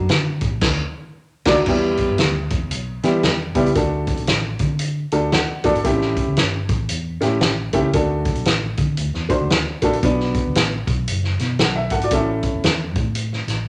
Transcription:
Already playing: upright piano F#3 A3 D4 F#4
0.09 fingered electric bass D3, snare, closed hi-hat
0.41 fingered electric bass A1, kick, closed hi-hat
0.61 fingered electric bass D2, kick, snare, crash
1.45 fingered electric bass D2, upright piano F#3 A3 D4 F#4 D5, kick, snare, crash
1.66 fingered electric bass E2, upright piano G3 B3 E4 G4, kick, crash
1.97 kick, closed hi-hat
2.10 fingered electric bass G2
2.18 fingered electric bass D2, snare, closed hi-hat
2.50 fingered electric bass E2, kick, closed hi-hat
2.71 fingered electric bass B1, closed hi-hat
3.03 fingered electric bass E3, upright piano G3 B3 E4 G4, snare, closed hi-hat
3.23 fingered electric bass E2, snare, closed hi-hat
3.55 fingered electric bass C#2, upright piano G3 B3 E4 G4, kick, closed hi-hat
3.66 closed hi-hat
3.75 fingered electric bass D2, upright piano A3 D4 F#4 A4, kick, closed hi-hat
4.07 kick, closed hi-hat
4.17 fingered electric bass B1, closed hi-hat
4.27 fingered electric bass A1, snare, closed hi-hat
4.59 fingered electric bass D3, kick, closed hi-hat
4.79 closed hi-hat
5.12 fingered electric bass D2, upright piano A3 D4 F#4 A4 A5, closed hi-hat
5.32 upright piano F#5, snare, closed hi-hat
5.64 fingered electric bass E2, upright piano A3 D4 F#4 A4 D5, kick, closed hi-hat
5.74 fingered electric bass G#1, closed hi-hat
5.84 fingered electric bass A1, upright piano A3 C4 E4 G4, kick, closed hi-hat
5.91 upright piano C#4
6.01 snare
6.17 kick, closed hi-hat
6.27 fingered electric bass C#2
6.37 fingered electric bass G1, snare, closed hi-hat
6.69 fingered electric bass A1, kick, closed hi-hat
6.89 fingered electric bass E2, closed hi-hat
7.21 fingered electric bass A2, upright piano A3 C#4 E4 G4, snare, closed hi-hat
7.41 fingered electric bass A1, snare, closed hi-hat
7.73 fingered electric bass C#2, upright piano A3 C#4 E4 G4, kick, closed hi-hat
7.93 fingered electric bass D2, upright piano A3 D4 F#4 A4, kick, closed hi-hat
8.25 kick, closed hi-hat
8.35 fingered electric bass B1, closed hi-hat
8.45 fingered electric bass A1, snare, closed hi-hat
8.77 fingered electric bass D3, kick, closed hi-hat
8.97 fingered electric bass D2, closed hi-hat
9.14 fingered electric bass E2, snare
9.29 upright piano A3 D4 F#4 C5, kick, closed hi-hat
9.41 fingered electric bass D2
9.50 fingered electric bass D2, snare, closed hi-hat
9.82 fingered electric bass A#1, upright piano A3 D4 F#4 A4, kick, closed hi-hat
9.93 closed hi-hat
10.03 fingered electric bass B1, upright piano B3 D4 F#4 B4, kick, closed hi-hat
10.20 snare
10.34 kick, closed hi-hat
10.47 fingered electric bass D2
10.55 fingered electric bass A1, snare, closed hi-hat
10.87 fingered electric bass B1, kick, closed hi-hat
11.08 fingered electric bass F#1, closed hi-hat
11.24 snare
11.39 fingered electric bass B2, snare, closed hi-hat
11.59 fingered electric bass B1, upright piano A4 F#5, snare, closed hi-hat
11.76 upright piano E5
11.90 fingered electric bass G#1, upright piano A4 F#5, kick, closed hi-hat
12.02 upright piano F#4 D5, closed hi-hat
12.11 fingered electric bass A1, upright piano A3 C#4 E4 A4, kick, closed hi-hat
12.43 kick, closed hi-hat
12.53 fingered electric bass E1
12.64 fingered electric bass E2, snare, closed hi-hat
12.96 fingered electric bass A2, kick, closed hi-hat
13.15 closed hi-hat
13.33 snare
13.47 fingered electric bass A1, snare, closed hi-hat

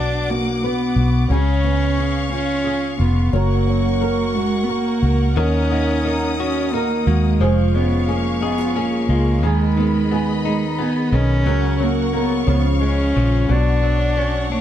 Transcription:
Already playing: fingered electric bass B1, nylon-string guitar B2 F#3 D4 B4, cello D4, string section F#5 D6
0.29 cello A#3, nylon-string guitar F#4
0.64 cello B3, nylon-string guitar B4
0.96 fingered electric bass B1, nylon-string guitar F#4
1.30 fingered electric bass C#2, nylon-string guitar C#3 G#4, cello C#4, string section F5 C#6
1.64 nylon-string guitar B3
1.98 nylon-string guitar G#4
2.32 cello C#4, nylon-string guitar F4
2.64 nylon-string guitar G#4
2.98 fingered electric bass F1, cello B3, nylon-string guitar F4
3.33 fingered electric bass F#1, nylon-string guitar F#3 A#4, cello A#3, string section A#4 F#5 C#6
3.67 nylon-string guitar C#4
4.01 nylon-string guitar A#4
4.35 cello G#3, nylon-string guitar F#4
4.64 cello B3
4.68 cello A#3, nylon-string guitar A#4
5.03 fingered electric bass C#2, nylon-string guitar F#4
5.36 fingered electric bass D#2, nylon-string guitar D#3 A#4, clean electric guitar D#3, cello C#4, string section D#6
5.71 clean electric guitar A#3, nylon-string guitar D#4
6.05 clean electric guitar D#4, nylon-string guitar A#4
6.39 cello C#4, nylon-string guitar F#4, clean electric guitar F#4
6.73 cello A#3, clean electric guitar D#4, nylon-string guitar A#4
7.06 fingered electric bass D#2, cello G#3, clean electric guitar A#3, nylon-string guitar F#4
7.40 fingered electric bass F1, nylon-string guitar F3 G#4, clean electric guitar F3, string section G#4 F5 C#6
7.75 clean electric guitar G#3, cello B3, nylon-string guitar C#4
8.08 cello A#3, clean electric guitar C#4, nylon-string guitar G#4
8.41 cello B3, nylon-string guitar D#4, clean electric guitar G#4
8.58 nylon-string guitar F4
8.76 cello A#3, clean electric guitar C#4, nylon-string guitar G#4
9.09 fingered electric bass C#2, clean electric guitar G#3, nylon-string guitar F4
9.42 fingered electric bass D#2, clean electric guitar D#3, nylon-string guitar D#3 G#4, cello G#3, string section D#5 B5
9.77 clean electric guitar D#3, nylon-string guitar B3
10.11 clean electric guitar B3, nylon-string guitar G#4
10.45 cello G#3, nylon-string guitar D#4, clean electric guitar D#4
10.79 clean electric guitar B3, cello B3, nylon-string guitar G#4
11.12 fingered electric bass B1, clean electric guitar D#3, cello C#4, nylon-string guitar D#4
11.46 fingered electric bass C#2, nylon-string guitar C#3 A#4, clean electric guitar F#3, string section A#4 F#5 C#6
11.80 clean electric guitar F#3, cello A#3, nylon-string guitar C#4
12.13 clean electric guitar A#3, nylon-string guitar A#4
12.17 cello B3
12.46 fingered electric bass C#2, nylon-string guitar C#3, clean electric guitar F3, cello B3, string section G#4 F5
12.80 clean electric guitar G#3, cello C#4, nylon-string guitar G#4
13.14 fingered electric bass A#1, clean electric guitar F3, nylon-string guitar F4
13.48 fingered electric bass B1, nylon-string guitar B2 C#5, clean electric guitar F#3, cello D4, string section C#5 F#5 C#6
13.83 clean electric guitar F#3, nylon-string guitar D4
14.17 clean electric guitar C#4, nylon-string guitar C#5
14.51 cello A#3, clean electric guitar D4, nylon-string guitar F#4

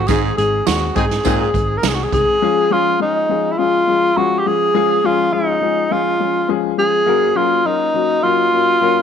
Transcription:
0.08 picked electric bass G#1, baritone saxophone G#2, upright piano G#3 C4 D#4 G#4, horn section C4 D#4 G#4, tenor saxophone G#4, kick, closed hi-hat, tambourine
0.38 picked electric bass G#1, upright piano G#3 C4 D#4 G#4, tenor saxophone G#4, closed hi-hat
0.66 picked electric bass D#2, upright piano G#3 C4 D#4 G#4, tenor saxophone F#4, snare, closed hi-hat, tambourine
0.95 picked electric bass G#2, upright piano G#3 C4 D#4 G#4, horn section C4 D#4 G#4, tenor saxophone G#4, kick, closed hi-hat
1.11 snare, closed hi-hat
1.24 picked electric bass G#2, baritone saxophone A#2, upright piano G#3 C4 D#4 G#4, horn section C4 D#4 G#4, kick, closed hi-hat, tambourine
1.54 picked electric bass G#1, upright piano G#3 C4 D#4 G#4, kick, closed hi-hat
1.78 tenor saxophone A#4
1.83 picked electric bass C2, upright piano G#3 C4 D#4 G#4, snare, closed hi-hat, tambourine
1.88 tenor saxophone G#4
1.95 tenor saxophone F#4
2.04 tenor saxophone G#4
2.12 picked electric bass C2, upright piano G#3 C4 D#4 G#4, tenor saxophone G#4, kick, closed hi-hat
2.42 upright piano F3 G#3 C#4 F4 G#4
2.70 upright piano F3 G#3 C#4 F4 G#4, tenor saxophone F4
3.00 upright piano F3 G#3 C#4 F4 G#4, tenor saxophone D#4
3.29 upright piano F3 G#3 C#4 F4 G#4
3.52 tenor saxophone E4
3.58 upright piano F3 G#3 C#4 F4 G#4, tenor saxophone F4
3.87 upright piano F3 G#3 C#4 F4 G#4
4.16 upright piano F3 G#3 C#4 F4 G#4, tenor saxophone F#4
4.39 tenor saxophone G4
4.46 upright piano F3 G#3 C#4 F4 G#4, tenor saxophone G#4
4.74 upright piano F3 G#3 C#4 F4 G#4
5.04 upright piano F3 G#3 C#4 F4 G#4, tenor saxophone F4
5.32 upright piano F3 G#3 C#4 F4 G#4, tenor saxophone D#4
5.61 upright piano F3 G#3 C#4 F4 G#4
5.90 upright piano F3 G#3 C#4 F4 G#4, tenor saxophone F4
6.19 upright piano F3 G#3 C#4 F4 G#4
6.48 upright piano F3 G#3 C#4 F4 G#4
6.77 upright piano F3 G#3 C#4 F4 G#4, tenor saxophone G#4
7.06 upright piano F#3 A#3 C#4 F#4 A#4
7.35 upright piano F#3 A#3 C#4 F#4 A#4, tenor saxophone F4
7.65 upright piano F#3 A#3 C#4 F#4 A#4, tenor saxophone D#4
7.94 upright piano F#3 A#3 C#4 F#4 A#4
8.23 upright piano F#3 A#3 C#4 F#4 A#4, tenor saxophone F4
8.52 upright piano F#3 A#3 C#4 F#4 A#4
8.81 upright piano F#3 A#3 C#4 F#4 A#4

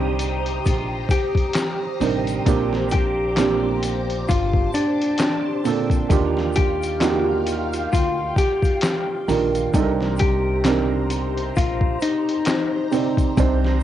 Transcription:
Already playing: upright bass C2, felt piano C3 G3 D4 D#4 G4 A#4, hollow-body jazz guitar G4, string machine G4 C5 A#5 D#6
0.19 closed hi-hat, shaker
0.46 closed hi-hat
0.65 upright bass A#1, hollow-body jazz guitar F4, kick, closed hi-hat, shaker
1.09 hollow-body jazz guitar G4, kick, closed hi-hat, shaker
1.35 kick, closed hi-hat
1.53 snare, clap, closed hi-hat, shaker
2.00 upright bass A1, felt piano C3 G3 D4 D#4 A#4, open hi-hat, shaker
2.27 closed hi-hat, shaker
2.45 upright bass A#1, felt piano A#2 A#3 C4 D4 G4, string machine D6, kick, closed hi-hat, shaker
2.73 snare
2.89 hollow-body jazz guitar G4, closed hi-hat, shaker
2.94 kick
3.37 felt piano A#2 A#3 C4 D4 G4, snare, clap, closed hi-hat, shaker
3.83 closed hi-hat, shaker
4.10 closed hi-hat
4.27 upright bass G1, hollow-body jazz guitar F4, string machine A5, kick, closed hi-hat, shaker
4.53 kick
4.73 hollow-body jazz guitar D4, closed hi-hat, shaker
5.02 closed hi-hat
5.18 snare, clap, closed hi-hat, shaker
5.64 felt piano A#2 A#3 C4 D4 A4, open hi-hat, shaker
5.90 kick, closed hi-hat, shaker
6.09 upright bass D#2, felt piano D#3 A#3 D4 F4 G4, string machine F4 F5 G5, kick, closed hi-hat, shaker
6.37 snare
6.53 hollow-body jazz guitar G4, closed hi-hat, shaker
6.58 kick
6.82 closed hi-hat, shaker
7.00 felt piano A#3 D4 D#4 F4 F#4, snare, clap, closed hi-hat, shaker
7.10 felt piano G4
7.47 closed hi-hat, shaker
7.73 closed hi-hat, shaker
7.93 upright bass D2, hollow-body jazz guitar F4, kick, closed hi-hat, shaker
8.36 hollow-body jazz guitar G4, kick, closed hi-hat, shaker
8.62 kick, closed hi-hat, shaker
8.81 snare, clap, closed hi-hat, shaker
9.28 upright bass A#1, felt piano D#3 A#3 D4 F4 A#4, open hi-hat, shaker
9.55 closed hi-hat, shaker
9.73 upright bass C2, felt piano C3 C4 D4 D#4 A4, string machine G4 C5 A#5, kick, closed hi-hat, shaker
9.83 felt piano A#4
10.01 snare
10.16 hollow-body jazz guitar G4, closed hi-hat, shaker
10.21 kick
10.64 felt piano C3 C4 D4 D#4 A#4, snare, clap, closed hi-hat, shaker
11.10 closed hi-hat, shaker
11.38 closed hi-hat
11.56 upright bass A#1, hollow-body jazz guitar F4, kick, closed hi-hat, shaker
11.81 kick
12.00 hollow-body jazz guitar D#4, closed hi-hat, shaker
12.29 closed hi-hat
12.45 snare, clap, closed hi-hat, shaker
12.91 felt piano C3 C4 D#4 C5 D5, open hi-hat, shaker
13.17 kick, closed hi-hat, shaker
13.37 upright bass C2, felt piano C3 C4 D4 D#4 C5, kick, closed hi-hat, shaker
13.65 snare

